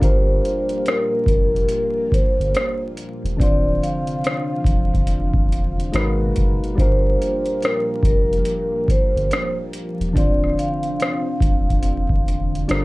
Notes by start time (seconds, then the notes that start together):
0.00 G1 A#2 G3 A#3 D4 F4 G4 C5, kick, closed hi-hat
0.05 A#4
0.45 closed hi-hat
0.69 closed hi-hat
0.86 A#4, cross-stick, closed hi-hat
1.26 F1 A#4, kick, closed hi-hat
1.56 closed hi-hat
1.69 closed hi-hat
2.12 C5, kick, closed hi-hat
2.39 G1, closed hi-hat
2.55 cross-stick, closed hi-hat
2.97 closed hi-hat
3.24 E1, closed hi-hat
3.37 D1 C3 D3 F3 C4 D4 F4 D5, kick
3.41 F4 C5, closed hi-hat
3.83 F5, closed hi-hat
4.07 closed hi-hat
4.24 cross-stick, closed hi-hat
4.64 E1, kick, closed hi-hat
4.94 kick, closed hi-hat
5.07 closed hi-hat
5.34 kick
5.52 closed hi-hat
5.80 closed hi-hat
5.92 G#1 A#2 B2 G#3 D#4 F#4 A#4 B4, cross-stick, closed hi-hat
6.36 F#1, kick, closed hi-hat
6.64 closed hi-hat
6.75 G1 A#2 F3 G3 A#3 D4 F4, kick
6.79 G4 A#4 C5, closed hi-hat
7.22 closed hi-hat
7.46 closed hi-hat
7.62 A#4, cross-stick, closed hi-hat
8.03 F1 A#4, kick, closed hi-hat
8.33 closed hi-hat
8.45 closed hi-hat
8.88 C5, kick, closed hi-hat
9.16 G1, closed hi-hat
9.31 cross-stick, closed hi-hat
9.73 closed hi-hat
10.00 E1, closed hi-hat
10.13 D1 D3 C4 D4 D5, kick, closed hi-hat
10.18 F4 C5
10.44 cross-stick
10.59 F5, closed hi-hat
10.83 closed hi-hat
11.00 cross-stick, closed hi-hat
11.40 E1, kick, closed hi-hat
11.70 kick, closed hi-hat
11.83 closed hi-hat
12.09 kick
12.28 closed hi-hat
12.55 closed hi-hat
12.68 G1 F3 G3 A#3 D4 F4 G4 A4 A#4, cross-stick, closed hi-hat